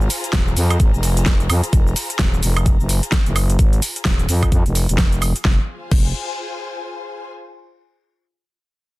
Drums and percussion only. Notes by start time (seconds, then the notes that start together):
0.01 shaker
0.10 open hi-hat, shaker
0.24 closed hi-hat, shaker
0.33 kick, snare, closed hi-hat, shaker
0.48 shaker
0.57 open hi-hat, shaker
0.70 closed hi-hat, high woodblock, shaker
0.80 kick, closed hi-hat, shaker
0.94 shaker
1.03 open hi-hat, shaker
1.17 closed hi-hat, shaker
1.26 kick, snare, closed hi-hat, shaker
1.40 closed hi-hat, shaker
1.50 open hi-hat, high woodblock, shaker
1.64 closed hi-hat, shaker
1.73 kick, closed hi-hat, shaker
1.87 shaker
1.96 open hi-hat, shaker
2.10 closed hi-hat, shaker
2.19 kick, snare, closed hi-hat, shaker
2.34 shaker
2.43 open hi-hat, shaker
2.57 closed hi-hat, high woodblock, shaker
2.66 kick, closed hi-hat, shaker
2.80 shaker
2.89 open hi-hat, shaker
3.03 closed hi-hat, shaker
3.12 kick, snare, closed hi-hat, shaker
3.26 closed hi-hat, shaker
3.36 open hi-hat, high woodblock, shaker
3.50 closed hi-hat, shaker
3.59 kick, closed hi-hat, shaker
3.73 closed hi-hat, shaker
3.82 open hi-hat, shaker
3.96 closed hi-hat, shaker
4.05 kick, snare, closed hi-hat, shaker
4.19 closed hi-hat, shaker
4.29 open hi-hat, shaker
4.43 kick, closed hi-hat, high woodblock, shaker
4.52 kick, closed hi-hat, shaker
4.66 closed hi-hat, shaker
4.75 open hi-hat, shaker
4.89 closed hi-hat, shaker
4.98 kick, snare, closed hi-hat, shaker
5.12 closed hi-hat, shaker
5.22 open hi-hat, high woodblock, shaker
5.36 closed hi-hat, shaker
5.45 kick, snare
5.91 kick, crash